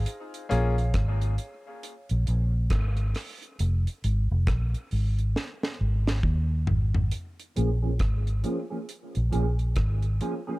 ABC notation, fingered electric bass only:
X:1
M:4/4
L:1/16
Q:"Swing 16ths" 1/4=68
K:Bbm
V:1 name="Fingered electric bass" clef=bass
z2 B,,,2 A,,,2 z3 B,,, B,,,2 A,,,2 z2 | F,,, z A,,, F,,, B,,, z A,,,2 z2 A,,,2 E,,2 A,,,2 | z2 B,,,2 A,,,2 z3 B,,, B,,,2 A,,,2 z2 |]